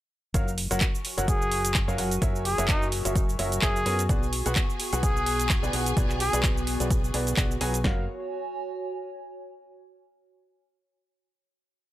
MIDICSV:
0, 0, Header, 1, 7, 480
1, 0, Start_track
1, 0, Key_signature, 6, "major"
1, 0, Tempo, 468750
1, 351, Time_signature, 4, 2, 24, 8
1, 12214, End_track
2, 0, Start_track
2, 0, Title_t, "String section"
2, 0, Program_c, 0, 48
2, 4191, Note_on_c, 0, 68, 92
2, 4192, Note_on_c, 0, 80, 89
2, 8042, Note_off_c, 0, 68, 0
2, 8042, Note_off_c, 0, 80, 0
2, 12214, End_track
3, 0, Start_track
3, 0, Title_t, "Ambient pad"
3, 0, Program_c, 1, 92
3, 351, Note_on_c, 1, 66, 81
3, 616, Note_on_c, 1, 85, 86
3, 811, Note_on_c, 1, 80, 82
3, 4191, Note_on_c, 1, 59, 90
3, 4909, Note_off_c, 1, 80, 0
3, 8021, Note_off_c, 1, 66, 0
3, 8031, Note_off_c, 1, 59, 0
3, 8031, Note_off_c, 1, 85, 0
3, 8033, Note_on_c, 1, 66, 80
3, 8111, Note_on_c, 1, 73, 77
3, 8187, Note_on_c, 1, 80, 79
3, 9910, Note_off_c, 1, 73, 0
3, 9911, Note_off_c, 1, 66, 0
3, 9911, Note_off_c, 1, 80, 0
3, 12214, End_track
4, 0, Start_track
4, 0, Title_t, "Upright piano"
4, 0, Program_c, 2, 0
4, 350, Note_on_c, 2, 77, 95
4, 351, Note_on_c, 2, 54, 86
4, 351, Note_on_c, 2, 66, 77
4, 351, Note_on_c, 2, 70, 80
4, 351, Note_on_c, 2, 73, 77
4, 493, Note_off_c, 2, 70, 0
4, 493, Note_off_c, 2, 77, 0
4, 494, Note_off_c, 2, 54, 0
4, 494, Note_off_c, 2, 66, 0
4, 494, Note_off_c, 2, 73, 0
4, 725, Note_on_c, 2, 54, 89
4, 725, Note_on_c, 2, 66, 81
4, 725, Note_on_c, 2, 70, 81
4, 725, Note_on_c, 2, 73, 79
4, 725, Note_on_c, 2, 78, 96
4, 842, Note_off_c, 2, 54, 0
4, 842, Note_off_c, 2, 66, 0
4, 842, Note_off_c, 2, 70, 0
4, 842, Note_off_c, 2, 73, 0
4, 842, Note_off_c, 2, 78, 0
4, 1204, Note_on_c, 2, 54, 86
4, 1204, Note_on_c, 2, 66, 76
4, 1204, Note_on_c, 2, 70, 76
4, 1204, Note_on_c, 2, 73, 78
4, 1204, Note_on_c, 2, 78, 94
4, 1892, Note_off_c, 2, 54, 0
4, 1892, Note_off_c, 2, 66, 0
4, 1892, Note_off_c, 2, 70, 0
4, 1892, Note_off_c, 2, 73, 0
4, 1892, Note_off_c, 2, 78, 0
4, 1924, Note_on_c, 2, 54, 101
4, 1925, Note_on_c, 2, 66, 91
4, 1925, Note_on_c, 2, 70, 91
4, 1925, Note_on_c, 2, 73, 89
4, 1925, Note_on_c, 2, 77, 112
4, 2015, Note_off_c, 2, 54, 0
4, 2015, Note_off_c, 2, 66, 0
4, 2015, Note_off_c, 2, 70, 0
4, 2015, Note_off_c, 2, 73, 0
4, 2015, Note_off_c, 2, 77, 0
4, 2030, Note_on_c, 2, 66, 70
4, 2030, Note_on_c, 2, 73, 70
4, 2030, Note_on_c, 2, 78, 84
4, 2031, Note_on_c, 2, 54, 75
4, 2031, Note_on_c, 2, 70, 70
4, 2173, Note_off_c, 2, 73, 0
4, 2173, Note_off_c, 2, 78, 0
4, 2174, Note_off_c, 2, 54, 0
4, 2174, Note_off_c, 2, 66, 0
4, 2174, Note_off_c, 2, 70, 0
4, 2270, Note_on_c, 2, 54, 90
4, 2270, Note_on_c, 2, 70, 82
4, 2270, Note_on_c, 2, 73, 83
4, 2270, Note_on_c, 2, 76, 101
4, 2271, Note_on_c, 2, 66, 83
4, 2482, Note_off_c, 2, 54, 0
4, 2482, Note_off_c, 2, 66, 0
4, 2482, Note_off_c, 2, 70, 0
4, 2482, Note_off_c, 2, 73, 0
4, 2482, Note_off_c, 2, 76, 0
4, 2644, Note_on_c, 2, 54, 91
4, 2644, Note_on_c, 2, 66, 83
4, 2644, Note_on_c, 2, 70, 83
4, 2644, Note_on_c, 2, 73, 84
4, 2644, Note_on_c, 2, 76, 100
4, 3092, Note_off_c, 2, 54, 0
4, 3092, Note_off_c, 2, 66, 0
4, 3092, Note_off_c, 2, 70, 0
4, 3092, Note_off_c, 2, 73, 0
4, 3092, Note_off_c, 2, 76, 0
4, 3124, Note_on_c, 2, 66, 69
4, 3124, Note_on_c, 2, 70, 69
4, 3124, Note_on_c, 2, 73, 68
4, 3125, Note_on_c, 2, 54, 74
4, 3125, Note_on_c, 2, 76, 81
4, 3445, Note_off_c, 2, 66, 0
4, 3445, Note_off_c, 2, 70, 0
4, 3446, Note_off_c, 2, 54, 0
4, 3446, Note_off_c, 2, 73, 0
4, 3446, Note_off_c, 2, 76, 0
4, 3471, Note_on_c, 2, 54, 82
4, 3471, Note_on_c, 2, 66, 75
4, 3471, Note_on_c, 2, 70, 73
4, 3471, Note_on_c, 2, 73, 75
4, 3471, Note_on_c, 2, 76, 92
4, 3686, Note_off_c, 2, 54, 0
4, 3686, Note_off_c, 2, 66, 0
4, 3686, Note_off_c, 2, 70, 0
4, 3686, Note_off_c, 2, 73, 0
4, 3686, Note_off_c, 2, 76, 0
4, 3710, Note_on_c, 2, 70, 80
4, 3711, Note_on_c, 2, 54, 90
4, 3711, Note_on_c, 2, 66, 80
4, 3711, Note_on_c, 2, 73, 79
4, 3711, Note_on_c, 2, 76, 97
4, 3853, Note_off_c, 2, 70, 0
4, 3854, Note_off_c, 2, 54, 0
4, 3854, Note_off_c, 2, 66, 0
4, 3854, Note_off_c, 2, 73, 0
4, 3854, Note_off_c, 2, 76, 0
4, 3952, Note_on_c, 2, 59, 92
4, 3952, Note_on_c, 2, 66, 84
4, 3952, Note_on_c, 2, 70, 82
4, 3952, Note_on_c, 2, 73, 83
4, 3952, Note_on_c, 2, 80, 100
4, 4094, Note_off_c, 2, 59, 0
4, 4094, Note_off_c, 2, 66, 0
4, 4094, Note_off_c, 2, 70, 0
4, 4094, Note_off_c, 2, 73, 0
4, 4094, Note_off_c, 2, 80, 0
4, 4192, Note_on_c, 2, 59, 90
4, 4192, Note_on_c, 2, 66, 80
4, 4192, Note_on_c, 2, 68, 79
4, 4192, Note_on_c, 2, 71, 81
4, 4192, Note_on_c, 2, 74, 96
4, 4334, Note_off_c, 2, 59, 0
4, 4334, Note_off_c, 2, 66, 0
4, 4334, Note_off_c, 2, 68, 0
4, 4334, Note_off_c, 2, 71, 0
4, 4334, Note_off_c, 2, 74, 0
4, 4565, Note_on_c, 2, 66, 83
4, 4566, Note_on_c, 2, 59, 91
4, 4566, Note_on_c, 2, 68, 83
4, 4566, Note_on_c, 2, 71, 82
4, 4566, Note_on_c, 2, 78, 97
4, 4682, Note_off_c, 2, 66, 0
4, 4683, Note_off_c, 2, 59, 0
4, 4683, Note_off_c, 2, 68, 0
4, 4683, Note_off_c, 2, 71, 0
4, 4683, Note_off_c, 2, 78, 0
4, 5044, Note_on_c, 2, 68, 81
4, 5044, Note_on_c, 2, 71, 81
4, 5045, Note_on_c, 2, 59, 87
4, 5045, Note_on_c, 2, 66, 78
4, 5045, Note_on_c, 2, 78, 96
4, 5733, Note_off_c, 2, 59, 0
4, 5733, Note_off_c, 2, 66, 0
4, 5733, Note_off_c, 2, 68, 0
4, 5733, Note_off_c, 2, 71, 0
4, 5733, Note_off_c, 2, 78, 0
4, 5765, Note_on_c, 2, 59, 100
4, 5765, Note_on_c, 2, 66, 93
4, 5765, Note_on_c, 2, 68, 91
4, 5765, Note_on_c, 2, 71, 91
4, 5765, Note_on_c, 2, 74, 111
4, 5855, Note_off_c, 2, 59, 0
4, 5855, Note_off_c, 2, 66, 0
4, 5855, Note_off_c, 2, 68, 0
4, 5855, Note_off_c, 2, 71, 0
4, 5855, Note_off_c, 2, 74, 0
4, 5871, Note_on_c, 2, 59, 79
4, 5871, Note_on_c, 2, 66, 71
4, 5871, Note_on_c, 2, 68, 70
4, 5871, Note_on_c, 2, 71, 73
4, 5871, Note_on_c, 2, 78, 83
4, 6014, Note_off_c, 2, 59, 0
4, 6014, Note_off_c, 2, 66, 0
4, 6014, Note_off_c, 2, 68, 0
4, 6014, Note_off_c, 2, 71, 0
4, 6014, Note_off_c, 2, 78, 0
4, 6110, Note_on_c, 2, 68, 85
4, 6111, Note_on_c, 2, 59, 93
4, 6111, Note_on_c, 2, 66, 83
4, 6111, Note_on_c, 2, 71, 85
4, 6111, Note_on_c, 2, 74, 101
4, 6322, Note_off_c, 2, 59, 0
4, 6322, Note_off_c, 2, 68, 0
4, 6322, Note_off_c, 2, 71, 0
4, 6323, Note_off_c, 2, 66, 0
4, 6323, Note_off_c, 2, 74, 0
4, 6485, Note_on_c, 2, 59, 92
4, 6485, Note_on_c, 2, 66, 85
4, 6485, Note_on_c, 2, 68, 84
4, 6485, Note_on_c, 2, 71, 87
4, 6485, Note_on_c, 2, 74, 101
4, 6933, Note_off_c, 2, 59, 0
4, 6933, Note_off_c, 2, 66, 0
4, 6933, Note_off_c, 2, 68, 0
4, 6933, Note_off_c, 2, 71, 0
4, 6933, Note_off_c, 2, 74, 0
4, 6964, Note_on_c, 2, 66, 68
4, 6965, Note_on_c, 2, 59, 78
4, 6965, Note_on_c, 2, 68, 71
4, 6965, Note_on_c, 2, 71, 69
4, 6965, Note_on_c, 2, 74, 83
4, 7285, Note_off_c, 2, 66, 0
4, 7286, Note_off_c, 2, 59, 0
4, 7286, Note_off_c, 2, 68, 0
4, 7286, Note_off_c, 2, 71, 0
4, 7286, Note_off_c, 2, 74, 0
4, 7311, Note_on_c, 2, 59, 81
4, 7311, Note_on_c, 2, 66, 76
4, 7311, Note_on_c, 2, 68, 75
4, 7311, Note_on_c, 2, 71, 78
4, 7311, Note_on_c, 2, 74, 92
4, 7526, Note_off_c, 2, 59, 0
4, 7526, Note_off_c, 2, 66, 0
4, 7526, Note_off_c, 2, 68, 0
4, 7526, Note_off_c, 2, 71, 0
4, 7526, Note_off_c, 2, 74, 0
4, 7552, Note_on_c, 2, 59, 89
4, 7552, Note_on_c, 2, 66, 82
4, 7552, Note_on_c, 2, 68, 83
4, 7552, Note_on_c, 2, 71, 83
4, 7552, Note_on_c, 2, 74, 100
4, 7694, Note_off_c, 2, 59, 0
4, 7694, Note_off_c, 2, 66, 0
4, 7694, Note_off_c, 2, 68, 0
4, 7694, Note_off_c, 2, 71, 0
4, 7694, Note_off_c, 2, 74, 0
4, 7791, Note_on_c, 2, 68, 83
4, 7792, Note_on_c, 2, 54, 92
4, 7792, Note_on_c, 2, 66, 85
4, 7792, Note_on_c, 2, 71, 85
4, 7792, Note_on_c, 2, 80, 101
4, 7934, Note_off_c, 2, 54, 0
4, 7934, Note_off_c, 2, 66, 0
4, 7934, Note_off_c, 2, 68, 0
4, 7934, Note_off_c, 2, 71, 0
4, 7934, Note_off_c, 2, 80, 0
4, 8032, Note_on_c, 2, 66, 85
4, 8032, Note_on_c, 2, 70, 78
4, 8032, Note_on_c, 2, 73, 78
4, 8032, Note_on_c, 2, 77, 95
4, 8215, Note_off_c, 2, 66, 0
4, 8215, Note_off_c, 2, 70, 0
4, 8215, Note_off_c, 2, 73, 0
4, 8215, Note_off_c, 2, 77, 0
4, 12214, End_track
5, 0, Start_track
5, 0, Title_t, "Trumpet"
5, 0, Program_c, 3, 56
5, 1312, Note_on_c, 3, 68, 94
5, 1792, Note_off_c, 3, 68, 0
5, 2511, Note_on_c, 3, 68, 92
5, 2723, Note_off_c, 3, 68, 0
5, 2752, Note_on_c, 3, 63, 92
5, 2963, Note_off_c, 3, 63, 0
5, 3711, Note_on_c, 3, 68, 97
5, 4191, Note_off_c, 3, 68, 0
5, 5152, Note_on_c, 3, 68, 97
5, 5631, Note_off_c, 3, 68, 0
5, 6351, Note_on_c, 3, 68, 93
5, 6563, Note_off_c, 3, 68, 0
5, 12214, End_track
6, 0, Start_track
6, 0, Title_t, "Fingered electric bass"
6, 0, Program_c, 4, 33
6, 351, Note_on_c, 4, 30, 94
6, 698, Note_off_c, 4, 30, 0
6, 725, Note_on_c, 4, 30, 94
6, 819, Note_off_c, 4, 30, 0
6, 1205, Note_on_c, 4, 30, 96
6, 1898, Note_off_c, 4, 30, 0
6, 1925, Note_on_c, 4, 42, 95
6, 2010, Note_off_c, 4, 42, 0
6, 2031, Note_on_c, 4, 30, 98
6, 2250, Note_off_c, 4, 30, 0
6, 2271, Note_on_c, 4, 30, 94
6, 2618, Note_off_c, 4, 30, 0
6, 2646, Note_on_c, 4, 30, 95
6, 3099, Note_off_c, 4, 30, 0
6, 3126, Note_on_c, 4, 30, 97
6, 3450, Note_off_c, 4, 30, 0
6, 3473, Note_on_c, 4, 30, 97
6, 3691, Note_off_c, 4, 30, 0
6, 3952, Note_on_c, 4, 42, 97
6, 4170, Note_off_c, 4, 42, 0
6, 4191, Note_on_c, 4, 35, 95
6, 4538, Note_off_c, 4, 35, 0
6, 4567, Note_on_c, 4, 35, 95
6, 4660, Note_off_c, 4, 35, 0
6, 5046, Note_on_c, 4, 35, 98
6, 5739, Note_off_c, 4, 35, 0
6, 5765, Note_on_c, 4, 35, 96
6, 5850, Note_off_c, 4, 35, 0
6, 5871, Note_on_c, 4, 35, 101
6, 6090, Note_off_c, 4, 35, 0
6, 6111, Note_on_c, 4, 35, 99
6, 6458, Note_off_c, 4, 35, 0
6, 6485, Note_on_c, 4, 35, 98
6, 6938, Note_off_c, 4, 35, 0
6, 6965, Note_on_c, 4, 35, 100
6, 7290, Note_off_c, 4, 35, 0
6, 7312, Note_on_c, 4, 35, 100
6, 7530, Note_off_c, 4, 35, 0
6, 7551, Note_on_c, 4, 35, 101
6, 7770, Note_off_c, 4, 35, 0
6, 7792, Note_on_c, 4, 35, 98
6, 8010, Note_off_c, 4, 35, 0
6, 8031, Note_on_c, 4, 30, 96
6, 8255, Note_off_c, 4, 30, 0
6, 12214, End_track
7, 0, Start_track
7, 0, Title_t, "Drums"
7, 351, Note_on_c, 9, 36, 117
7, 352, Note_on_c, 9, 42, 70
7, 358, Note_on_c, 9, 69, 54
7, 453, Note_off_c, 9, 36, 0
7, 454, Note_off_c, 9, 42, 0
7, 461, Note_off_c, 9, 69, 0
7, 493, Note_on_c, 9, 69, 34
7, 591, Note_on_c, 9, 46, 107
7, 595, Note_off_c, 9, 69, 0
7, 694, Note_off_c, 9, 46, 0
7, 726, Note_on_c, 9, 42, 54
7, 732, Note_on_c, 9, 69, 67
7, 826, Note_on_c, 9, 39, 126
7, 828, Note_off_c, 9, 42, 0
7, 831, Note_on_c, 9, 36, 118
7, 831, Note_on_c, 9, 42, 70
7, 835, Note_off_c, 9, 69, 0
7, 838, Note_on_c, 9, 69, 56
7, 928, Note_off_c, 9, 39, 0
7, 934, Note_off_c, 9, 36, 0
7, 934, Note_off_c, 9, 42, 0
7, 940, Note_off_c, 9, 69, 0
7, 973, Note_on_c, 9, 69, 34
7, 1072, Note_on_c, 9, 46, 105
7, 1075, Note_off_c, 9, 69, 0
7, 1175, Note_off_c, 9, 46, 0
7, 1206, Note_on_c, 9, 42, 54
7, 1213, Note_on_c, 9, 69, 67
7, 1308, Note_off_c, 9, 42, 0
7, 1311, Note_on_c, 9, 36, 120
7, 1312, Note_on_c, 9, 42, 68
7, 1315, Note_off_c, 9, 69, 0
7, 1319, Note_on_c, 9, 69, 57
7, 1413, Note_off_c, 9, 36, 0
7, 1414, Note_off_c, 9, 42, 0
7, 1421, Note_off_c, 9, 69, 0
7, 1452, Note_on_c, 9, 69, 35
7, 1552, Note_on_c, 9, 46, 106
7, 1555, Note_off_c, 9, 69, 0
7, 1654, Note_off_c, 9, 46, 0
7, 1686, Note_on_c, 9, 42, 55
7, 1692, Note_on_c, 9, 69, 67
7, 1786, Note_on_c, 9, 39, 127
7, 1788, Note_off_c, 9, 42, 0
7, 1791, Note_on_c, 9, 36, 121
7, 1792, Note_on_c, 9, 42, 71
7, 1795, Note_off_c, 9, 69, 0
7, 1798, Note_on_c, 9, 69, 57
7, 1888, Note_off_c, 9, 39, 0
7, 1893, Note_off_c, 9, 36, 0
7, 1894, Note_off_c, 9, 42, 0
7, 1901, Note_off_c, 9, 69, 0
7, 1932, Note_on_c, 9, 69, 35
7, 2032, Note_on_c, 9, 46, 107
7, 2035, Note_off_c, 9, 69, 0
7, 2134, Note_off_c, 9, 46, 0
7, 2165, Note_on_c, 9, 42, 55
7, 2172, Note_on_c, 9, 69, 67
7, 2268, Note_off_c, 9, 42, 0
7, 2271, Note_on_c, 9, 36, 122
7, 2272, Note_on_c, 9, 42, 67
7, 2274, Note_off_c, 9, 69, 0
7, 2279, Note_on_c, 9, 69, 55
7, 2373, Note_off_c, 9, 36, 0
7, 2374, Note_off_c, 9, 42, 0
7, 2381, Note_off_c, 9, 69, 0
7, 2412, Note_on_c, 9, 69, 33
7, 2512, Note_on_c, 9, 46, 110
7, 2514, Note_off_c, 9, 69, 0
7, 2614, Note_off_c, 9, 46, 0
7, 2645, Note_on_c, 9, 42, 52
7, 2652, Note_on_c, 9, 69, 64
7, 2746, Note_on_c, 9, 39, 125
7, 2748, Note_off_c, 9, 42, 0
7, 2751, Note_on_c, 9, 36, 127
7, 2751, Note_on_c, 9, 42, 67
7, 2754, Note_off_c, 9, 69, 0
7, 2758, Note_on_c, 9, 69, 55
7, 2848, Note_off_c, 9, 39, 0
7, 2853, Note_off_c, 9, 36, 0
7, 2854, Note_off_c, 9, 42, 0
7, 2861, Note_off_c, 9, 69, 0
7, 2892, Note_on_c, 9, 69, 33
7, 2991, Note_on_c, 9, 46, 109
7, 2994, Note_off_c, 9, 69, 0
7, 3094, Note_off_c, 9, 46, 0
7, 3125, Note_on_c, 9, 42, 53
7, 3132, Note_on_c, 9, 69, 65
7, 3228, Note_off_c, 9, 42, 0
7, 3231, Note_on_c, 9, 36, 126
7, 3231, Note_on_c, 9, 42, 68
7, 3235, Note_off_c, 9, 69, 0
7, 3238, Note_on_c, 9, 69, 54
7, 3333, Note_off_c, 9, 36, 0
7, 3334, Note_off_c, 9, 42, 0
7, 3340, Note_off_c, 9, 69, 0
7, 3372, Note_on_c, 9, 69, 34
7, 3471, Note_on_c, 9, 46, 113
7, 3475, Note_off_c, 9, 69, 0
7, 3574, Note_off_c, 9, 46, 0
7, 3606, Note_on_c, 9, 42, 52
7, 3612, Note_on_c, 9, 69, 65
7, 3706, Note_on_c, 9, 39, 127
7, 3708, Note_off_c, 9, 42, 0
7, 3711, Note_on_c, 9, 36, 126
7, 3712, Note_on_c, 9, 42, 69
7, 3715, Note_off_c, 9, 69, 0
7, 3718, Note_on_c, 9, 69, 56
7, 3808, Note_off_c, 9, 39, 0
7, 3814, Note_off_c, 9, 36, 0
7, 3814, Note_off_c, 9, 42, 0
7, 3821, Note_off_c, 9, 69, 0
7, 3852, Note_on_c, 9, 69, 34
7, 3952, Note_on_c, 9, 46, 109
7, 3955, Note_off_c, 9, 69, 0
7, 4054, Note_off_c, 9, 46, 0
7, 4085, Note_on_c, 9, 42, 54
7, 4092, Note_on_c, 9, 69, 65
7, 4188, Note_off_c, 9, 42, 0
7, 4191, Note_on_c, 9, 36, 125
7, 4192, Note_on_c, 9, 42, 66
7, 4194, Note_off_c, 9, 69, 0
7, 4198, Note_on_c, 9, 69, 54
7, 4294, Note_off_c, 9, 36, 0
7, 4294, Note_off_c, 9, 42, 0
7, 4301, Note_off_c, 9, 69, 0
7, 4332, Note_on_c, 9, 69, 32
7, 4431, Note_on_c, 9, 46, 118
7, 4434, Note_off_c, 9, 69, 0
7, 4533, Note_off_c, 9, 46, 0
7, 4565, Note_on_c, 9, 42, 52
7, 4572, Note_on_c, 9, 69, 65
7, 4665, Note_on_c, 9, 39, 127
7, 4667, Note_off_c, 9, 42, 0
7, 4671, Note_on_c, 9, 36, 127
7, 4671, Note_on_c, 9, 42, 65
7, 4674, Note_off_c, 9, 69, 0
7, 4678, Note_on_c, 9, 69, 54
7, 4768, Note_off_c, 9, 39, 0
7, 4773, Note_off_c, 9, 42, 0
7, 4774, Note_off_c, 9, 36, 0
7, 4780, Note_off_c, 9, 69, 0
7, 4812, Note_on_c, 9, 69, 33
7, 4911, Note_on_c, 9, 46, 116
7, 4914, Note_off_c, 9, 69, 0
7, 5014, Note_off_c, 9, 46, 0
7, 5045, Note_on_c, 9, 42, 53
7, 5051, Note_on_c, 9, 69, 64
7, 5147, Note_off_c, 9, 42, 0
7, 5151, Note_on_c, 9, 36, 123
7, 5151, Note_on_c, 9, 42, 65
7, 5154, Note_off_c, 9, 69, 0
7, 5158, Note_on_c, 9, 69, 54
7, 5253, Note_off_c, 9, 42, 0
7, 5254, Note_off_c, 9, 36, 0
7, 5260, Note_off_c, 9, 69, 0
7, 5292, Note_on_c, 9, 69, 34
7, 5391, Note_on_c, 9, 46, 115
7, 5394, Note_off_c, 9, 69, 0
7, 5493, Note_off_c, 9, 46, 0
7, 5525, Note_on_c, 9, 42, 51
7, 5532, Note_on_c, 9, 69, 62
7, 5625, Note_on_c, 9, 39, 123
7, 5627, Note_off_c, 9, 42, 0
7, 5631, Note_on_c, 9, 36, 126
7, 5631, Note_on_c, 9, 42, 66
7, 5634, Note_off_c, 9, 69, 0
7, 5638, Note_on_c, 9, 69, 56
7, 5728, Note_off_c, 9, 39, 0
7, 5733, Note_off_c, 9, 36, 0
7, 5733, Note_off_c, 9, 42, 0
7, 5740, Note_off_c, 9, 69, 0
7, 5771, Note_on_c, 9, 69, 34
7, 5870, Note_on_c, 9, 46, 116
7, 5874, Note_off_c, 9, 69, 0
7, 5973, Note_off_c, 9, 46, 0
7, 6005, Note_on_c, 9, 42, 51
7, 6011, Note_on_c, 9, 69, 67
7, 6107, Note_off_c, 9, 42, 0
7, 6111, Note_on_c, 9, 36, 126
7, 6111, Note_on_c, 9, 42, 66
7, 6114, Note_off_c, 9, 69, 0
7, 6117, Note_on_c, 9, 69, 55
7, 6213, Note_off_c, 9, 36, 0
7, 6213, Note_off_c, 9, 42, 0
7, 6220, Note_off_c, 9, 69, 0
7, 6239, Note_on_c, 9, 39, 38
7, 6251, Note_on_c, 9, 69, 33
7, 6341, Note_off_c, 9, 39, 0
7, 6351, Note_on_c, 9, 46, 114
7, 6354, Note_off_c, 9, 69, 0
7, 6453, Note_off_c, 9, 46, 0
7, 6485, Note_on_c, 9, 42, 50
7, 6492, Note_on_c, 9, 69, 68
7, 6586, Note_on_c, 9, 39, 119
7, 6588, Note_off_c, 9, 42, 0
7, 6591, Note_on_c, 9, 36, 127
7, 6592, Note_on_c, 9, 42, 64
7, 6594, Note_off_c, 9, 69, 0
7, 6598, Note_on_c, 9, 69, 57
7, 6689, Note_off_c, 9, 39, 0
7, 6693, Note_off_c, 9, 36, 0
7, 6694, Note_off_c, 9, 42, 0
7, 6701, Note_off_c, 9, 69, 0
7, 6732, Note_on_c, 9, 69, 34
7, 6831, Note_on_c, 9, 46, 112
7, 6835, Note_off_c, 9, 69, 0
7, 6934, Note_off_c, 9, 46, 0
7, 6965, Note_on_c, 9, 42, 50
7, 6972, Note_on_c, 9, 69, 64
7, 7067, Note_off_c, 9, 42, 0
7, 7071, Note_on_c, 9, 36, 125
7, 7071, Note_on_c, 9, 42, 64
7, 7074, Note_off_c, 9, 69, 0
7, 7078, Note_on_c, 9, 69, 56
7, 7173, Note_off_c, 9, 36, 0
7, 7174, Note_off_c, 9, 42, 0
7, 7180, Note_off_c, 9, 69, 0
7, 7212, Note_on_c, 9, 69, 34
7, 7311, Note_on_c, 9, 46, 113
7, 7315, Note_off_c, 9, 69, 0
7, 7414, Note_off_c, 9, 46, 0
7, 7445, Note_on_c, 9, 42, 50
7, 7452, Note_on_c, 9, 69, 66
7, 7546, Note_on_c, 9, 39, 121
7, 7547, Note_off_c, 9, 42, 0
7, 7551, Note_on_c, 9, 36, 127
7, 7551, Note_on_c, 9, 42, 65
7, 7554, Note_off_c, 9, 69, 0
7, 7558, Note_on_c, 9, 69, 56
7, 7648, Note_off_c, 9, 39, 0
7, 7653, Note_off_c, 9, 36, 0
7, 7654, Note_off_c, 9, 42, 0
7, 7661, Note_off_c, 9, 69, 0
7, 7692, Note_on_c, 9, 69, 34
7, 7792, Note_on_c, 9, 46, 111
7, 7794, Note_off_c, 9, 69, 0
7, 7894, Note_off_c, 9, 46, 0
7, 7926, Note_on_c, 9, 42, 49
7, 7932, Note_on_c, 9, 69, 66
7, 8028, Note_off_c, 9, 42, 0
7, 8031, Note_on_c, 9, 36, 107
7, 8031, Note_on_c, 9, 38, 106
7, 8035, Note_off_c, 9, 69, 0
7, 8134, Note_off_c, 9, 36, 0
7, 8134, Note_off_c, 9, 38, 0
7, 12214, End_track
0, 0, End_of_file